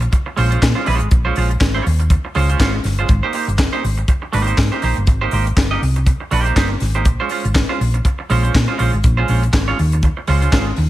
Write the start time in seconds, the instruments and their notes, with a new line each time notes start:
0.01 muted clean electric guitar stroke, closed hi-hat
0.12 muted clean electric guitar stroke, kick, closed hi-hat
0.26 muted clean electric guitar stroke
0.36 fingered electric bass A#1, clean electric guitar G#3 C#4 F4 C5, open hi-hat
0.51 clean electric guitar G#3 C#4 F4 C5, closed hi-hat
0.61 fingered electric bass A#2, muted clean electric guitar stroke, kick, snare, clap, closed hi-hat
0.75 clean electric guitar G#3 C#4 F4 C5
0.85 fingered electric bass A#1, clean electric guitar G#3 C#4 F4 C5, open hi-hat
1.00 fingered electric bass G#1, muted clean electric guitar stroke, closed hi-hat
1.11 fingered electric bass A#1, muted clean electric guitar stroke, kick, closed hi-hat
1.25 clean electric guitar G#3 C#4 F4 C5
1.35 fingered electric bass A#1, clean electric guitar G#3 C#4 F4 C5, open hi-hat
1.51 muted clean electric guitar stroke, closed hi-hat
1.61 fingered electric bass G#1, muted clean electric guitar stroke, kick, snare, clap, closed hi-hat
1.75 clean electric guitar G#3 C#4 F4 C#5
1.86 fingered electric bass D#2, muted clean electric guitar stroke, open hi-hat
1.99 muted clean electric guitar stroke, closed hi-hat
2.10 muted clean electric guitar stroke, kick, closed hi-hat
2.25 muted clean electric guitar stroke
2.35 fingered electric bass C#2, clean electric guitar G#3 C#4 F4 C5, open hi-hat
2.49 clean electric guitar G#3 C#4 F4 C5, closed hi-hat
2.60 fingered electric bass G#1, clean electric guitar G#3 C#4 F4 C5, kick, snare, clap, closed hi-hat
2.74 muted clean electric guitar stroke
2.84 fingered electric bass G1, muted clean electric guitar stroke, snare, open hi-hat
2.98 clean electric guitar G#3 C#4 F4 C5, closed hi-hat
3.09 fingered electric bass G#1, muted clean electric guitar stroke, kick, closed hi-hat
3.23 clean electric guitar A#3 D#4 G4 C5
3.33 clean electric guitar A#3 D#4 G4 C5, open hi-hat
3.47 fingered electric bass G1, muted clean electric guitar stroke, closed hi-hat
3.58 muted clean electric guitar stroke, kick, snare, clap, closed hi-hat
3.73 clean electric guitar A#3 D#4 G4 C5
3.84 fingered electric bass G#1, muted clean electric guitar stroke, open hi-hat
3.98 muted clean electric guitar stroke, closed hi-hat
4.08 muted clean electric guitar stroke, kick, closed hi-hat
4.22 muted clean electric guitar stroke
4.32 fingered electric bass G#1, clean electric guitar A#3 D#4 G4 C5, open hi-hat
4.47 clean electric guitar A#3 D#4 G4 C5, closed hi-hat
4.58 fingered electric bass G#2, muted clean electric guitar stroke, kick, snare, clap, closed hi-hat
4.72 clean electric guitar A#3 D#4 G4 C5
4.82 fingered electric bass A#1, clean electric guitar A#3 D#4 G4 C5, open hi-hat
4.96 fingered electric bass G1, muted clean electric guitar stroke, closed hi-hat
5.07 fingered electric bass G#1, muted clean electric guitar stroke, kick, closed hi-hat
5.21 clean electric guitar A#3 D#4 G4 C5
5.31 fingered electric bass G#1, clean electric guitar A#3 D#4 G4 C5, open hi-hat
5.46 muted clean electric guitar stroke, closed hi-hat
5.57 fingered electric bass G1, muted clean electric guitar stroke, kick, snare, clap, closed hi-hat
5.71 clean electric guitar A#3 D#4 G4 D#5
5.82 fingered electric bass C2, muted clean electric guitar stroke, open hi-hat
5.96 muted clean electric guitar stroke, closed hi-hat
6.06 muted clean electric guitar stroke, kick, closed hi-hat
6.20 muted clean electric guitar stroke
6.31 fingered electric bass A#1, clean electric guitar A#3 D#4 G4 C5, open hi-hat
6.45 clean electric guitar A#3 D#4 G4 C5, closed hi-hat
6.56 fingered electric bass G1, clean electric guitar A#3 D#4 G4 C5, kick, snare, clap, closed hi-hat
6.70 muted clean electric guitar stroke
6.80 fingered electric bass G#1, muted clean electric guitar stroke, snare, open hi-hat
6.94 clean electric guitar A#3 D#4 G4 C5, closed hi-hat
7.05 fingered electric bass A#1, muted clean electric guitar stroke, kick, closed hi-hat
7.20 clean electric guitar G#3 C#4 F4 C5
7.29 clean electric guitar G#3 C#4 F4 C5, open hi-hat
7.45 fingered electric bass G#1, muted clean electric guitar stroke, closed hi-hat
7.55 muted clean electric guitar stroke, kick, snare, clap, closed hi-hat
7.69 clean electric guitar G#3 C#4 F4 C5
7.81 fingered electric bass A#1, muted clean electric guitar stroke, open hi-hat
7.94 muted clean electric guitar stroke, closed hi-hat
8.05 muted clean electric guitar stroke, kick, closed hi-hat
8.19 muted clean electric guitar stroke
8.30 fingered electric bass A#1, clean electric guitar G#3 C#4 F4 C5, open hi-hat
8.43 clean electric guitar G#3 C#4 F4 C5, closed hi-hat
8.54 fingered electric bass A#2, muted clean electric guitar stroke, kick, snare, clap, closed hi-hat
8.68 clean electric guitar G#3 C#4 F4 C5
8.78 fingered electric bass A#1, clean electric guitar G#3 C#4 F4 C5, open hi-hat
8.93 fingered electric bass G#1, muted clean electric guitar stroke, closed hi-hat
9.04 fingered electric bass A#1, muted clean electric guitar stroke, kick, closed hi-hat
9.17 clean electric guitar G#3 C#4 F4 C5
9.28 fingered electric bass A#1, clean electric guitar G#3 C#4 F4 C5, open hi-hat
9.43 muted clean electric guitar stroke, closed hi-hat
9.53 fingered electric bass G#1, muted clean electric guitar stroke, kick, snare, clap, closed hi-hat
9.68 clean electric guitar G#3 C#4 F4 C#5
9.79 fingered electric bass D#2, muted clean electric guitar stroke, open hi-hat
9.92 muted clean electric guitar stroke, closed hi-hat
10.03 muted clean electric guitar stroke, kick, closed hi-hat
10.17 muted clean electric guitar stroke
10.27 fingered electric bass C#2, clean electric guitar G#3 C#4 F4 C5, open hi-hat
10.41 clean electric guitar G#3 C#4 F4 C5, closed hi-hat
10.52 fingered electric bass G#1, clean electric guitar G#3 C#4 F4 C5, kick, snare, clap, closed hi-hat
10.66 muted clean electric guitar stroke
10.76 fingered electric bass D#2, muted clean electric guitar stroke, open hi-hat